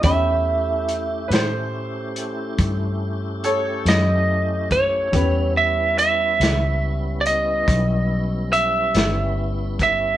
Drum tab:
HH |x-xx-xx-xx-x|x-xx-xx-xx-x|
SD |---o-----o--|---o-----o--|
BD |o-----o----o|o-----o----o|